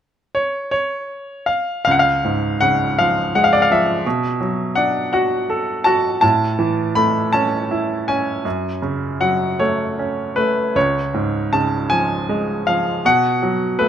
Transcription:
0.35 C#5
0.71 C#5
1.46 F5
1.85 C#2 F5
1.91 F#5
1.99 F5
2.25 G#2
2.61 C#3 F#5
2.99 F3 F5
3.35 G#3 F#5
3.44 F5
3.53 D5
3.62 F5
3.71 F3 E5
4.06 B2
4.41 F#3
4.75 D4 F#5
5.13 F#4 F#5
5.50 A4
5.84 F#4 A5
6.21 A2 A5
6.59 E3
6.95 A3 B5
7.33 C#4 A5
7.71 E4
8.08 C#4 G#5
8.45 F#2
8.82 C#3
9.21 F#3 F#5
9.59 A3 C#5
9.99 C#4
10.36 A3 B4
10.75 C#2 C#5
11.14 G#2
11.53 C#3 A5
11.90 F3 G#5
12.29 G#3
12.67 F3 F5
13.05 B2 F#5
13.42 F#3
13.79 A3 B4

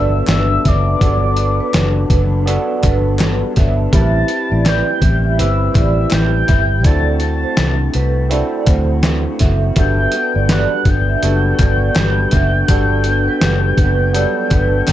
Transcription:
Already playing: G1 F#3 B3 D4 F#4 A4 D5 E6
0.27 G1 G2 D3 F#3 B3 D4 E6, snare, clap, closed hi-hat
0.64 F#1 F#3 B3 D4 E5 D6, kick, snare, closed hi-hat
0.99 G1 G2 D3 F#3 B3 D4 F#4 A4 D5, kick, closed hi-hat
1.37 F#3 B3 D4, closed hi-hat
1.60 B4
1.74 F#1 D3 F#3 B3 D4, snare, clap, closed hi-hat
2.10 F#1 F#3 B3 D4 B4, kick, closed hi-hat
2.46 D3 F#3 B3 D4 F#4 A4 D5, closed hi-hat
2.82 G1 F#3 B3 D4 B4, kick, clap, closed hi-hat
3.19 G2 D3 F#3 B3 D4, snare, clap, closed hi-hat
3.55 G1 F#3 B3 D4 E5, kick, snare, closed hi-hat
3.92 A1 A2 E3 G3 C4 E4 G4 A#4 E5 A6, kick, closed hi-hat
4.01 B4
4.28 G3 C4 E4, closed hi-hat
4.52 A1 D5
4.64 A2 E3 G3 C4 E4 D5 G6, snare, clap, closed hi-hat
5.01 A1 G3 C4 E4, kick, closed hi-hat
5.24 E5
5.37 G1 E3 G3 C4 E4 G4 B4 E6, closed hi-hat
5.74 A1 G3 C4 E4 D5 E6, kick, clap, closed hi-hat
6.10 A1 A2 E3 G3 C4 E4 G6, snare, clap, closed hi-hat
6.47 G1 G3 C4 E4 E5, kick, snare, closed hi-hat
6.83 D2 D3 A3 C4 E4 F#4 A4 D5 A6, kick, closed hi-hat
7.20 C4 F#4 A6, closed hi-hat
7.24 A3
7.43 C5
7.57 C2 D3 A3 C4 F#4, snare, clap, closed hi-hat
7.94 C2 A3 C4 F#4 B4, closed hi-hat
8.29 D3 A3 C4 E4 F#4 A4 D5, closed hi-hat
8.34 F#4
8.66 D2 A3 C4 F#4 C5, kick, clap, closed hi-hat
9.03 D3 A3 C4 F#4, snare, clap, closed hi-hat
9.39 F#1 C4 F#4 E5, kick, snare, closed hi-hat
9.44 A3
9.76 G1 G3 B3 D4 F#4 A4 E5 G6, kick, closed hi-hat
10.12 D4 F#4, closed hi-hat
10.16 B3
10.35 G1 D5
10.49 G3 B3 D4 F#4 D5 F#6, snare, clap, closed hi-hat
10.85 G1 B3 D4 F#4 G6, kick, closed hi-hat
11.09 E5
11.22 F#1 G3 B3 D4 F#4 A4, closed hi-hat
11.59 G1 B3 D4 F#4 D5, kick, clap, closed hi-hat
11.96 G1 G3 B3 D4 F#4, snare, clap, closed hi-hat
12.31 F#1 B3 D4 F#4 E5, kick, snare, closed hi-hat
12.68 G1 G3 B3 D4 F#4 A4 D5, kick, closed hi-hat
13.04 B3 D4 F#4, closed hi-hat
13.28 B4
13.40 F#1 G3 B3 D4 F#4, snare, clap, closed hi-hat
13.77 F#1 B3 D4 F#4 B4, kick, closed hi-hat
14.13 F#3 G3 B3 D4 F#4 A4 D5, closed hi-hat
14.51 G1 B3 D4 F#4 B4, kick, clap, closed hi-hat
14.88 G1 G3 B3, snare, clap, closed hi-hat

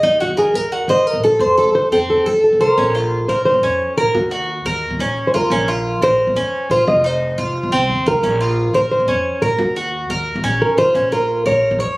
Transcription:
0.03 D#2 D#4
0.20 F#4
0.28 D#3
0.37 G#4 A#4
0.54 D#2 A#4
0.72 F#4
0.88 D#2 C5 D#5
1.07 A#4
1.13 A#1
1.24 A4
1.39 F2 C5
1.58 A4
1.65 F3
1.75 C5
1.92 F2 C4 A4
2.10 A4
2.26 F2 A4
2.44 A4
2.53 C2
2.61 A#4 C5
2.78 A#1 C#4
2.95 F4
3.28 A#1 A#4 C5
3.45 C5
3.54 A#1
3.63 F2 C#4
3.97 A#2 A#4
4.14 D#2 F#4
4.31 F#4
4.65 D#2 A#4
4.91 D#2
4.99 A#1 C#4
5.27 C5
5.34 F2 F4 A#4
5.50 A#1 C#4
5.68 F4
6.02 A#1 A#4 C5
6.27 A#1
6.36 F2 C#4
6.70 A#2 F4 C5
6.87 F1 D#5
7.04 D#4 C5
7.38 F1 F4
7.63 F1
7.72 C2 C4
7.89 D#2
8.06 C2 F4 A#4
8.23 A#1 C#4
8.41 F4
8.74 A#1 A#4 C5
8.91 C5
9.00 A#1
9.08 F2 C#4
9.42 A#2 A#4
9.59 D#2 F#4
9.76 F#4
10.10 D#2 A#4
10.36 D#2
10.44 A#1 C#4
10.62 A#4
10.77 D#3 F4 C5
10.95 A#1 C#4
11.12 F4 A#4
11.46 A#1 A#4 C#5
11.71 A#1
11.79 F2 C#5

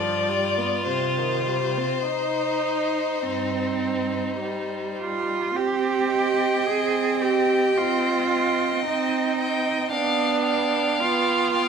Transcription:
Already playing: G2 F4 D5
0.00 F3
0.29 G3
0.58 B3
0.87 C3 C5
1.18 D#3
1.48 G3
1.78 C4
2.07 D#4
3.23 G2 C4
4.40 G3
5.00 F4
5.57 C4 G4
6.11 D#5 G5
6.66 C4 G#4
7.20 G4 D#5 G5
7.77 C4 F4
8.29 D#5 G5
8.87 C4 D#4
9.39 D#5 G5
9.91 B3 D4 F5 G5
10.43 F5 G5
10.99 B3 F4
11.53 F5 G5

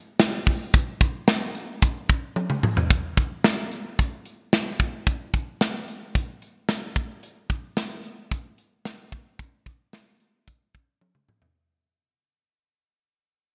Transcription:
0.20 snare, closed hi-hat
0.46 kick, open hi-hat
0.74 kick, closed hi-hat
1.01 kick, closed hi-hat
1.28 snare, closed hi-hat
1.55 closed hi-hat
1.82 kick, closed hi-hat
2.09 kick, closed hi-hat
2.36 high tom
2.50 mid tom
2.63 mid tom
2.77 floor tom
2.90 kick, closed hi-hat
3.17 kick, closed hi-hat
3.44 snare, closed hi-hat
3.71 closed hi-hat
3.99 kick, closed hi-hat
4.25 closed hi-hat
4.53 snare, closed hi-hat
4.80 kick, closed hi-hat
5.07 kick, closed hi-hat
5.34 kick, closed hi-hat
5.61 snare, closed hi-hat
5.88 closed hi-hat
6.15 kick, closed hi-hat
6.42 closed hi-hat
6.69 snare, closed hi-hat
6.96 kick, closed hi-hat
7.23 closed hi-hat
7.50 kick, closed hi-hat
7.77 snare, closed hi-hat
8.04 closed hi-hat
8.31 kick, closed hi-hat
8.58 closed hi-hat
8.85 snare, closed hi-hat
9.12 kick, closed hi-hat
9.39 kick, closed hi-hat
9.66 kick, closed hi-hat
9.93 snare, closed hi-hat
10.20 closed hi-hat
10.47 kick, closed hi-hat
10.74 kick, closed hi-hat
11.01 high tom
11.15 mid tom
11.29 mid tom
11.42 floor tom

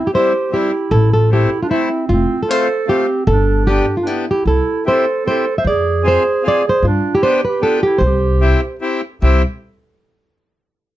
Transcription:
0.05 E4 G4
0.13 G3 C4 E4 G4 C5
0.51 G3 C4 E4 G4
0.91 A1 E4 A4
1.13 F4 A4
1.30 A3 C4 E4 G4
1.63 D4 F4
1.69 A3 C4 E4
2.09 F1 C4 F4
2.43 F4 A4
2.49 A3 C4 F4 A4 C5
2.87 A3 C4 F4 G4
3.27 G1 D4 A4
3.67 B3 D4 G4
3.71 D4
3.97 F4
4.02 B3 D4 G4
4.07 B3 E4
4.29 E4 G4
4.45 C2 E4 A4
4.86 C4 E4 G4 A4 C5
5.26 C4 E4 G4 A4 C5
5.58 C5 E5
5.65 F2 G#4 D5
6.03 C4 F4 G#4
6.08 G#4 C5
6.43 C4 F4 G#4
6.48 D5
6.67 G#4 C5
6.83 G2 F4
6.87 D4
7.15 E4 G4
7.21 B3 D4 G4 C5
7.45 G4 B4
7.61 B3 D4 G4 A4
7.65 F4
7.83 E4 G4
7.98 C2 C5
8.06 G4
8.41 C4 E4 G4
8.81 C4 E4 G4
9.22 C2 C4 E4 G4

